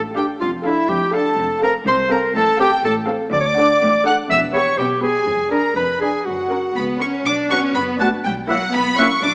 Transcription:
0.00 0.30 A1 medium
0.00 0.30 A2 medium
0.15 0.34 D4 soft
0.15 0.27 G4 medium
0.15 0.34 A4 soft
0.15 0.34 F5 soft
0.15 0.24 G5 soft
0.40 0.79 F1 medium
0.40 0.79 F2 medium
0.40 0.52 F4 medium
0.40 0.49 F5 soft
0.64 0.83 D4 medium
0.64 0.91 E4 medium
0.64 0.83 A4 soft
0.64 0.89 E5 medium
0.64 0.83 F5 medium
0.89 1.28 F1 medium
0.89 1.28 F2 medium
0.89 1.16 G4 medium
0.89 1.14 G5 medium
1.13 1.32 D4 soft
1.13 1.32 A4 medium
1.13 1.63 A4 medium
1.13 1.32 F5 medium
1.13 1.61 A5 medium
1.38 1.77 F1 medium
1.38 1.77 F2 medium
1.62 1.81 C4 medium
1.62 1.81 A4 medium
1.62 1.74 A#4 medium
1.62 1.81 F5 medium
1.62 1.70 A#5 medium
1.87 2.25 C2 medium
1.87 2.26 C2 medium
1.87 2.13 C5 medium
1.87 1.95 C6 medium
2.11 2.30 C4 medium
2.11 2.30 A4 medium
2.11 2.35 A#4 medium
2.11 2.30 F5 medium
2.11 2.19 A#5 medium
2.36 2.74 A1 medium
2.36 2.74 A2 medium
2.36 2.60 A4 medium
2.36 2.60 A5 medium
2.60 2.78 C4 medium
2.60 2.71 G4 medium
2.60 2.78 A4 medium
2.60 2.78 F5 medium
2.60 2.84 G5 medium
2.84 3.23 A1 medium
2.84 3.23 A2 medium
2.84 2.96 A4 medium
2.84 2.93 A5 medium
3.08 3.27 C4 medium
3.08 3.27 A4 medium
3.08 3.27 F5 medium
3.33 3.72 D2 medium
3.33 3.42 D5 medium
3.33 4.02 D6 medium
3.41 3.49 C#5 medium
3.48 4.05 D5 medium
3.58 3.76 D4 medium
3.58 3.76 A4 medium
3.58 3.76 F#5 medium
3.82 4.20 A1 medium
3.82 4.20 A2 medium
4.06 4.24 D4 medium
4.06 4.24 A4 medium
4.06 4.17 F#5 medium
4.06 4.25 F#5 medium
4.06 4.14 F#6 medium
4.30 4.69 E1 medium
4.30 4.69 E2 medium
4.30 4.41 E5 medium
4.30 4.39 E6 medium
4.54 4.73 B3 medium
4.54 4.73 G4 medium
4.54 4.80 C#5 medium
4.54 4.73 B5 medium
4.54 4.78 C#6 medium
4.78 5.17 B1 medium
4.78 5.17 B2 medium
4.78 5.02 G4 medium
4.78 4.87 G5 soft
5.02 5.21 B3 soft
5.02 5.21 G4 soft
5.02 5.51 G#4 medium
5.02 5.51 G#5 medium
5.02 5.22 B5 medium
5.27 5.67 F1 medium
5.27 5.67 F2 medium
5.51 5.70 D4 medium
5.51 5.70 G#4 soft
5.51 5.75 A#4 medium
5.51 5.76 A#5 medium
5.51 5.71 B5 soft
5.76 6.16 F1 soft
5.76 6.16 F2 medium
5.76 6.00 B4 medium
5.76 6.02 B5 medium
6.01 6.20 D4 soft
6.01 6.27 G#4 medium
6.01 6.20 G#4 soft
6.01 6.26 G#5 soft
6.01 6.20 B5 soft
6.26 6.66 F#1 medium
6.26 6.66 F#2 soft
6.26 7.01 F#4 soft
6.26 7.00 F#5 soft
6.50 6.70 C#4 soft
6.50 6.70 A#4 soft
6.50 6.70 C#6 soft
6.76 7.16 C#2 soft
6.76 7.00 B3 soft
6.76 6.85 B5 medium
7.01 7.20 C#4 soft
7.01 7.26 C#4 soft
7.01 7.20 A#4 soft
7.01 7.20 C#6 medium
7.26 7.65 B1 medium
7.26 7.51 D4 medium
7.26 7.34 D6 medium
7.50 7.69 B3 soft
7.50 7.60 B3 soft
7.50 7.75 C#4 medium
7.50 7.69 D4 soft
7.50 7.60 F#4 soft
7.50 7.69 F#4 soft
7.50 7.69 D5 soft
7.50 7.60 F#5 soft
7.50 7.59 C#6 medium
7.50 7.57 F#6 soft
7.75 8.14 F#1 medium
7.75 8.00 B3 medium
7.75 7.83 B5 medium
7.99 8.07 A3 medium
7.99 8.18 B3 soft
7.99 8.09 B3 soft
7.99 8.18 D4 soft
7.99 8.09 F#4 soft
7.99 8.18 F#4 soft
7.99 8.18 D5 soft
7.99 8.08 F#5 soft
7.99 8.08 A5 medium
7.99 8.07 F#6 soft
8.25 8.64 B1 medium
8.25 8.33 G3 medium
8.25 8.33 G5 medium
8.48 8.73 F#3 medium
8.48 8.67 A#3 medium
8.48 8.58 A#3 soft
8.48 8.67 E4 soft
8.48 8.58 E4 soft
8.48 8.68 F#4 medium
8.48 8.68 C#5 medium
8.48 8.57 E5 soft
8.48 8.73 F#5 medium
8.48 8.55 F#6 soft
8.73 9.13 B1 medium
8.73 8.98 B3 medium
8.73 8.99 B5 medium
8.98 9.17 A#3 soft
8.98 9.07 A#3 soft
8.98 9.08 A#3 soft
8.98 9.07 C#4 soft
8.98 9.17 E4 soft
8.98 9.07 E4 soft
8.98 9.17 F#4 soft
8.98 9.17 C#5 medium
8.98 9.07 E5 soft
8.98 9.23 C#6 medium
8.98 9.04 F#6 soft
9.23 9.34 B1 medium
9.23 9.31 D4 medium
9.23 9.31 D6 medium

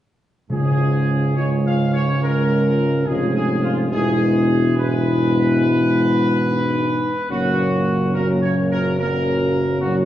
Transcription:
0.50 3.08 C#2 medium
0.50 1.32 G#2 medium
0.50 1.74 C#3 medium
0.50 1.32 G#3 medium
0.50 1.33 C#4 medium
0.50 1.33 F4 soft
0.50 1.32 G#4 medium
1.36 3.03 G#2 medium
1.36 3.03 G#3 medium
1.36 3.02 C#4 medium
1.36 3.02 F4 medium
1.36 1.49 C#5 medium
1.66 1.91 F5 medium
1.94 2.20 C#5 medium
2.22 3.03 A#4 medium
3.06 3.91 F1 soft
3.06 3.88 G#2 medium
3.06 3.88 G#3 medium
3.06 3.88 C#4 medium
3.06 3.87 F4 soft
3.06 3.33 G#4 medium
3.34 3.61 G#4 medium
3.63 3.76 F4 medium
3.92 6.98 E1 medium
3.92 4.73 G#2 medium
3.92 4.73 G#3 medium
3.92 4.74 B3 medium
3.92 4.73 E4 medium
3.92 4.73 G#4 medium
4.76 7.14 G#2 medium
4.76 7.14 G#3 medium
4.76 7.12 B3 medium
4.76 6.41 E4 medium
4.76 7.30 B4 medium
6.45 7.12 D#4 soft
7.29 10.05 F#1 medium
7.29 8.13 A#2 medium
7.29 8.10 F#3 medium
7.29 8.09 A#3 medium
7.29 8.09 C#4 soft
7.29 8.09 F#4 medium
8.14 8.94 A#2 medium
8.14 8.94 F#3 medium
8.14 8.94 A#3 medium
8.14 8.94 C#4 medium
8.14 8.27 A#4 medium
8.41 8.54 C#5 medium
8.70 8.96 A#4 medium
8.97 9.78 A#2 medium
8.97 9.78 F#3 medium
8.97 9.77 A#3 medium
8.97 9.77 C#4 medium
8.97 9.77 A#4 medium
9.80 10.05 A#2 medium
9.80 10.05 F#3 medium
9.80 10.05 A#3 medium
9.80 10.05 C#4 medium
9.80 9.93 F#4 medium

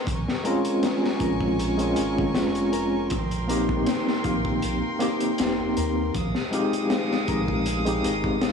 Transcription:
0.07 0.25 A#1 loud
0.07 6.11 A#4 medium
0.07 3.08 G#5 medium
0.07 3.08 C#6 medium
0.07 kick loud
0.07 closed hi-hat medium
0.28 snare soft
0.44 1.74 G#3 medium
0.44 1.74 C4 medium
0.44 1.75 C#4 medium
0.44 1.75 F4 medium
0.44 1.20 A#4 loud
0.44 closed hi-hat medium
0.65 closed hi-hat soft
0.83 snare loud
0.83 closed hi-hat medium
1.04 snare medium
1.20 1.93 A#1 medium
1.20 2.72 A#4 medium
1.20 kick medium
1.20 closed hi-hat medium
1.41 kick medium
1.59 closed hi-hat medium
1.77 3.08 G#3 medium
1.77 3.08 C4 medium
1.77 3.09 C#4 medium
1.77 3.10 F4 medium
1.77 closed hi-hat soft
1.96 2.37 G#1 loud
1.96 4.24 F4 medium
1.96 closed hi-hat medium
2.18 kick loud
2.35 3.13 F1 medium
2.35 snare loud
2.35 closed hi-hat medium
2.55 closed hi-hat soft
2.73 3.48 A#4 medium
2.73 closed hi-hat medium
3.10 3.84 A#1 medium
3.10 6.11 G5 medium
3.10 6.11 C6 medium
3.10 kick loud
3.10 closed hi-hat medium
3.31 closed hi-hat soft
3.47 4.96 A#3 medium
3.47 4.96 C4 medium
3.47 4.97 D#4 medium
3.47 4.97 G4 medium
3.47 5.00 A#4 medium
3.47 closed hi-hat medium
3.69 kick medium
3.86 snare loud
3.86 closed hi-hat medium
4.07 snare soft
4.24 4.58 A#1 loud
4.24 6.52 F4 loud
4.24 kick loud
4.24 closed hi-hat medium
4.45 kick loud
4.62 4.81 A#1 medium
4.62 closed hi-hat medium
4.99 6.12 A#3 medium
4.99 6.12 C4 medium
4.99 6.13 D#4 medium
4.99 6.13 G4 medium
4.99 5.76 A#4 medium
4.99 closed hi-hat medium
5.20 closed hi-hat soft
5.38 5.57 F1 medium
5.38 snare loud
5.38 closed hi-hat medium
5.59 5.75 F1 loud
5.77 6.11 D#2 medium
5.77 7.28 A#4 medium
5.77 closed hi-hat medium
6.14 6.33 A#1 loud
6.14 8.52 G#3 medium
6.14 8.52 F5 medium
6.14 8.52 D#6 medium
6.14 kick loud
6.14 closed hi-hat medium
6.35 snare soft
6.51 7.81 G#3 medium
6.51 7.82 C4 medium
6.51 7.82 D#4 medium
6.51 8.52 F4 loud
6.51 7.83 G4 loud
6.51 closed hi-hat medium
6.73 closed hi-hat soft
6.90 snare loud
6.90 closed hi-hat medium
7.11 snare soft
7.28 8.01 A#1 loud
7.28 8.04 A#4 medium
7.28 kick loud
7.28 closed hi-hat medium
7.48 kick loud
7.66 closed hi-hat medium
7.85 8.52 G#3 medium
7.85 8.52 C4 medium
7.85 8.52 D#4 medium
7.85 8.52 G4 medium
7.85 closed hi-hat soft
8.04 8.45 G#1 loud
8.04 8.52 A#4 medium
8.04 closed hi-hat medium
8.24 kick loud
8.42 8.52 F1 medium
8.42 snare loud
8.42 closed hi-hat medium

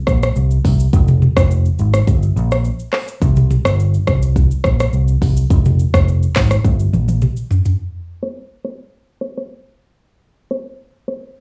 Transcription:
0.07 0.29 A#1 medium
0.07 kick medium
0.07 cross-stick medium
0.07 shaker soft
0.23 cross-stick medium
0.23 shaker medium
0.36 0.57 C2 medium
0.36 shaker medium
0.51 shaker medium
0.65 0.86 C2 medium
0.65 kick loud
0.65 open hi-hat medium
0.65 shaker soft
0.80 shaker medium
0.93 1.25 F1 loud
0.93 kick loud
0.93 shaker medium
1.08 mid tom loud
1.08 shaker medium
1.22 mid tom medium
1.22 shaker medium
1.37 1.68 F1 medium
1.37 kick loud
1.37 cross-stick loud
1.37 shaker medium
1.51 shaker medium
1.65 shaker medium
1.79 2.00 G#1 loud
1.79 shaker medium
1.94 cross-stick medium
1.94 shaker medium
2.07 2.29 G1 loud
2.07 kick medium
2.07 shaker medium
2.23 shaker medium
2.36 2.68 A#1 medium
2.36 shaker soft
2.51 cross-stick medium
2.51 shaker medium
2.65 shaker medium
2.79 shaker medium
2.93 cross-stick medium
2.93 clap medium
2.93 open hi-hat medium
2.93 shaker medium
3.08 shaker loud
3.22 3.54 C2 loud
3.22 kick loud
3.22 shaker medium
3.36 mid tom medium
3.36 shaker medium
3.51 mid tom medium
3.51 shaker medium
3.65 3.96 G1 loud
3.65 cross-stick loud
3.65 shaker loud
3.80 shaker medium
3.94 shaker medium
4.07 4.50 C2 medium
4.07 kick loud
4.07 cross-stick medium
4.07 shaker medium
4.22 shaker medium
4.36 kick medium
4.36 shaker medium
4.51 shaker medium
4.64 4.86 A#1 loud
4.64 kick medium
4.64 cross-stick medium
4.64 shaker soft
4.80 cross-stick medium
4.80 shaker medium
4.93 5.14 C2 medium
4.93 shaker medium
5.08 shaker medium
5.22 5.43 C2 medium
5.22 kick loud
5.22 open hi-hat medium
5.22 shaker soft
5.37 shaker medium
5.50 5.83 F1 loud
5.50 kick loud
5.50 shaker medium
5.65 mid tom loud
5.65 shaker medium
5.79 shaker medium
5.94 6.25 F1 medium
5.94 kick loud
5.94 cross-stick loud
5.94 shaker medium
6.08 shaker medium
6.23 shaker medium
6.36 6.57 G#1 loud
6.36 kick loud
6.36 cross-stick medium
6.36 clap medium
6.36 open hi-hat medium
6.36 shaker medium
6.51 cross-stick medium
6.51 shaker loud
6.65 6.86 G1 loud
6.65 kick medium
6.65 high tom medium
6.65 shaker medium
6.80 shaker medium
6.93 7.25 A#1 medium
6.93 mid tom medium
6.93 shaker soft
7.08 mid tom medium
7.08 shaker medium
7.22 mid tom medium
7.22 shaker medium
7.37 shaker medium
7.51 floor tom loud
7.51 shaker soft
7.65 floor tom medium
7.65 shaker medium
8.22 cross-stick loud
8.65 cross-stick medium
9.21 cross-stick medium
9.37 cross-stick medium
10.51 cross-stick loud
11.08 cross-stick medium

